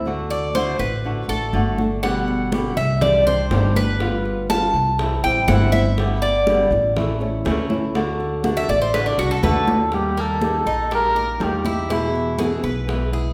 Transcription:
Already playing: upright bass D2, cuban tres E5
0.05 nylon-string guitar D3 A3 D4 F#4, high conga
0.30 cuban tres D5, high conga
0.55 nylon-string guitar D3 A3 D4 F#4, cuban tres C5, high conga
0.79 upright bass A1, cuban tres B4, muted nylon-string guitar stroke, high conga
1.04 nylon-string guitar D3 A3 D4 F#4, high conga
1.28 upright bass A1, nylon-string guitar A3 D4 F#4, cuban tres A4, high conga
1.53 upright bass G1, nylon-string guitar D3 A3 D4 F#4, high conga
1.78 nylon-string guitar A3 D4 F#4, high conga
2.03 nylon-string guitar B2 D3 G3 B3 G4, cuban tres F#5, high bongo, high conga
2.28 high bongo, high conga
2.52 nylon-string guitar B2 D3 G3 B3 G4, high bongo, high conga
2.77 upright bass C2, cuban tres E5, muted nylon-string guitar stroke, high bongo, high conga
3.01 nylon-string guitar D#3 G3 D4 G4, cuban tres D5, high bongo, high conga, low conga
3.27 nylon-string guitar G3 D4 G4, cuban tres C5, high bongo, high conga, low conga
3.51 upright bass G1, nylon-string guitar C3 D#3 G3 D4 G4, high bongo, low bongo, high conga
3.76 nylon-string guitar G3 D4 G4, cuban tres B4, high conga
4.00 nylon-string guitar G3 B3 F4, high bongo, high conga
4.25 high bongo, high conga
4.50 nylon-string guitar G3 B3 F4, cuban tres A5, high bongo, high conga
4.74 upright bass C2, muted nylon-string guitar stroke, high bongo, high conga
4.99 nylon-string guitar E3 G3 C4 E4, high bongo, high conga
5.23 upright bass A1, nylon-string guitar G3 C4 E4, cuban tres G5, high conga
5.48 upright bass G1, nylon-string guitar C3 E3 G3 C4 E4, cuban tres F#5, high bongo, low bongo, high conga
5.72 nylon-string guitar G3 C4 E4, cuban tres E5, high bongo, high conga
5.98 nylon-string guitar D3 G3 B3 G4, high bongo, high conga
6.22 cuban tres D5, high bongo, high conga
6.47 nylon-string guitar D3 G3 B3 G4, high bongo, high conga
6.71 upright bass A1, muted nylon-string guitar stroke, high bongo, high conga
6.96 nylon-string guitar E3 A3 C#4 E4, high bongo, high conga, low conga
7.20 nylon-string guitar A3 C#4 E4, high bongo, high conga
7.45 upright bass D2, nylon-string guitar E3 A3 C#4 E4, high bongo, low bongo, high conga
7.69 nylon-string guitar A3 C#4 E4, high conga
7.95 nylon-string guitar D3 A3 D4 F#4, high bongo, high conga
8.20 high bongo, high conga
8.43 nylon-string guitar D3 A3 D4 F#4, high bongo, high conga
8.57 cuban tres E5
8.68 upright bass A1, cuban tres D5, muted nylon-string guitar stroke, high bongo, high conga
8.82 cuban tres C5
8.93 nylon-string guitar D3 A3 D4 F#4, cuban tres B4, high bongo, high conga
9.06 cuban tres D4
9.18 upright bass C2, nylon-string guitar A3 D4 F#4, cuban tres F#4, high bongo, high conga
9.31 cuban tres A4
9.43 upright bass D#2, nylon-string guitar D3 A3 D4 F#4, muted trumpet A4, cuban tres B4, high bongo, high conga
9.67 nylon-string guitar A3 D4 F#4, low bongo, high conga
9.92 nylon-string guitar D#3 G3 A#3 D#4 G4, muted trumpet G4, high bongo, high conga
10.17 cuban tres A#3, muted trumpet A4, high bongo
10.41 nylon-string guitar D#3 G3 A#3 D#4 G4, high bongo, high conga
10.66 upright bass A#1, cuban tres D#4, muted nylon-string guitar stroke, high bongo, high conga
10.91 nylon-string guitar G3 A#3 D#4 G4, cuban tres G4, high bongo, high conga
10.95 muted trumpet A#4
11.15 nylon-string guitar A#3 D#4 G4, cuban tres A#4, high bongo, high conga
11.40 upright bass E2, nylon-string guitar D#3 G3 A#3 D#4 G4, muted trumpet G4, high bongo, low bongo, high conga
11.65 nylon-string guitar A#3 D#4 G4, cuban tres E4, high conga
11.89 nylon-string guitar B2 E3 G#3 B3 E4, cuban tres E4, muted trumpet E4, high bongo, high conga
12.14 high bongo, high conga
12.38 nylon-string guitar B2 E3 G#3 B3 E4, cuban tres G#4, high bongo, high conga
12.63 upright bass B1, cuban tres B4, muted nylon-string guitar stroke, high bongo, high conga
12.87 nylon-string guitar E3 G#3 B3 E4, high bongo, high conga
13.12 nylon-string guitar G#3 B3 E4, cuban tres G#4, high conga

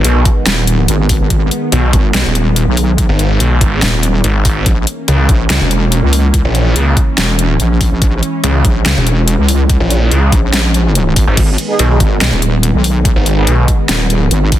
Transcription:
Already playing: supersaw synth D#3 G#3 B3
0.04 detuned saw bass B1, closed hi-hat
0.25 kick, closed hi-hat
0.46 wobble bass D#1, snare, closed hi-hat
0.67 closed hi-hat
0.88 wobble bass G#1, closed hi-hat
1.09 kick, open hi-hat
1.20 wobble bass G#1
1.30 wobble bass G#1, kick, closed hi-hat
1.51 closed hi-hat
1.72 detuned saw bass B1, closed hi-hat
1.93 wobble bass G#1, kick, closed hi-hat
2.14 detuned saw bass B1, snare, closed hi-hat
2.25 wobble bass D#1
2.35 closed hi-hat
2.56 closed hi-hat
2.67 wobble bass B1
2.77 open hi-hat
2.98 kick, closed hi-hat
3.09 detuned saw bass G#1
3.19 detuned saw bass G#1, closed hi-hat
3.40 detuned saw bass B1, closed hi-hat
3.61 detuned saw bass G#1, kick, closed hi-hat
3.82 wobble bass D#1, snare, closed hi-hat
4.03 closed hi-hat
4.24 detuned saw bass G#1, closed hi-hat
4.45 detuned saw bass G#1, kick, open hi-hat
4.66 wobble bass A#1, supersaw synth E3 A#3 C#4, kick, closed hi-hat
4.87 closed hi-hat
5.08 detuned saw bass C#2, closed hi-hat
5.29 wobble bass A#1, kick, closed hi-hat
5.50 detuned saw bass C#2, snare, closed hi-hat
5.61 wobble bass E1
5.71 closed hi-hat
5.92 closed hi-hat
6.03 wobble bass C#2
6.13 open hi-hat
6.34 kick, closed hi-hat
6.45 detuned saw bass A#1
6.55 detuned saw bass A#1, closed hi-hat
6.76 detuned saw bass C#2, closed hi-hat
6.97 kick, closed hi-hat
7.18 wobble bass E1, snare, closed hi-hat
7.39 closed hi-hat
7.60 wobble bass A#1, closed hi-hat
7.81 kick, open hi-hat
7.92 wobble bass A#1
8.02 wobble bass A#1, supersaw synth G#3, kick, closed hi-hat
8.23 closed hi-hat
8.44 detuned saw bass C#2, closed hi-hat
8.65 wobble bass A#1, kick, closed hi-hat
8.86 detuned saw bass C#2, snare, closed hi-hat
8.97 wobble bass E1
9.07 closed hi-hat
9.28 closed hi-hat
9.38 wobble bass C#2
9.49 open hi-hat
9.70 kick, closed hi-hat
9.80 detuned saw bass A#1
9.90 detuned saw bass A#1, closed hi-hat
10.11 detuned saw bass C#2, closed hi-hat
10.32 wobble bass A#1, kick, closed hi-hat
10.53 snare, closed hi-hat
10.74 closed hi-hat
10.95 closed hi-hat
11.16 wobble bass G#1, kick, open hi-hat
11.27 detuned saw bass G#1
11.37 wobble bass G#1, supersaw synth D#3 B3, kick, closed hi-hat, crash
11.58 closed hi-hat
11.69 brass ensemble B3 D#4 G#4
11.79 detuned saw bass B1, closed hi-hat
11.90 brass ensemble B3 D#4 G#4
12.00 wobble bass G#1, kick, closed hi-hat
12.21 detuned saw bass B1, snare, closed hi-hat
12.32 wobble bass D#1
12.42 closed hi-hat
12.63 closed hi-hat
12.74 wobble bass B1
12.84 open hi-hat
13.05 kick, closed hi-hat
13.16 detuned saw bass G#1
13.26 detuned saw bass G#1, closed hi-hat
13.37 brass ensemble B3 D#4 G#4
13.47 detuned saw bass B1, closed hi-hat
13.68 kick, closed hi-hat
13.89 wobble bass D#1, snare, closed hi-hat
14.10 closed hi-hat
14.31 wobble bass G#1, closed hi-hat
14.52 kick, open hi-hat

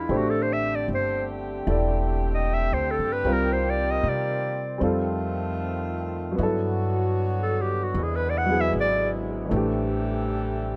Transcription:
Already playing: grand piano B3 D4 G#4, clarinet E4
0.09 upright bass A1, saxophone section D3 A3 C4 G4, grand piano A3 D4 G4 C5
0.17 clarinet F#4
0.30 clarinet A4
0.42 clarinet C5
0.53 clarinet E5
0.75 clarinet D5
0.88 upright bass G1
0.94 clarinet C5
1.67 upright bass E1, grand piano E4 A4 D5
2.34 clarinet D#5
2.54 clarinet E5
2.72 upright bass D2, clarinet C5
2.91 clarinet A4
2.99 upright bass G2
3.13 clarinet B4
3.24 upright bass C2, saxophone section D#3 A#3, grand piano G3 C4 F4 A#4
3.32 clarinet A#4
3.53 clarinet C5
3.70 clarinet D5
3.91 clarinet D#5
4.03 upright bass C3
4.09 clarinet D5
4.78 upright bass F2, grand piano G3 C4 F4, saxophone section A3
4.82 saxophone section D#3 F4, grand piano A4
6.32 grand piano F#3 B3
6.37 upright bass G2, saxophone section D3 F#3 B3 F#4, grand piano E4
6.43 grand piano A4
7.43 clarinet A4
7.61 clarinet G4
7.83 clarinet F#4
7.94 upright bass E2, saxophone section C3 G#3 E4
8.03 clarinet G#4
8.16 clarinet B4
8.30 clarinet D5
8.38 clarinet F#5
8.46 grand piano F#3 B3 E4
8.51 grand piano G#4
8.61 clarinet E5
8.73 upright bass G#1
8.80 clarinet D5
9.45 grand piano E3 A3, saxophone section G3
9.50 upright bass A1, saxophone section E3 A3 G4, grand piano D4
9.57 grand piano G4

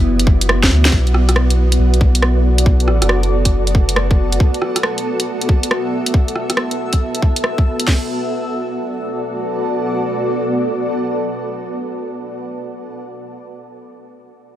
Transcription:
Already playing: sub bass F#1, ambient pad B3 E4 F#4 D5
0.19 closed hi-hat
0.27 kick
0.41 closed hi-hat
0.49 cross-stick
0.63 kick, snare, closed hi-hat
0.71 sub bass D2
0.85 snare, closed hi-hat
0.92 sub bass B1, kick
1.07 closed hi-hat
1.14 cross-stick
1.29 cross-stick, closed hi-hat
1.35 ambient pad D5, cross-stick
1.50 ambient pad A4, closed hi-hat
1.72 closed hi-hat
1.79 sub bass B1
1.94 closed hi-hat
2.01 kick
2.15 closed hi-hat
2.22 cross-stick
2.58 closed hi-hat
2.66 kick
2.80 closed hi-hat
2.88 sub bass A1, cross-stick
3.02 sub bass F#1, cross-stick, closed hi-hat
3.09 cross-stick
3.23 closed hi-hat
3.45 kick, closed hi-hat
3.67 closed hi-hat
3.75 kick
3.89 closed hi-hat
3.96 cross-stick
4.11 kick
4.32 closed hi-hat
4.40 kick
4.54 closed hi-hat
4.62 cross-stick
4.76 cross-stick, closed hi-hat
4.83 ambient pad E5, cross-stick
4.98 closed hi-hat
5.20 closed hi-hat
5.41 closed hi-hat
5.49 kick
5.63 closed hi-hat
5.71 cross-stick
6.06 closed hi-hat
6.14 kick
6.28 closed hi-hat
6.36 cross-stick
6.50 cross-stick, closed hi-hat
6.57 cross-stick
6.71 closed hi-hat
6.93 kick, closed hi-hat
7.15 closed hi-hat
7.22 kick
7.36 closed hi-hat
7.44 cross-stick
7.58 kick
7.80 closed hi-hat
7.87 ambient pad B3, kick, snare, crash
7.96 ambient pad F#4
8.03 ambient pad A4
8.07 ambient pad D5

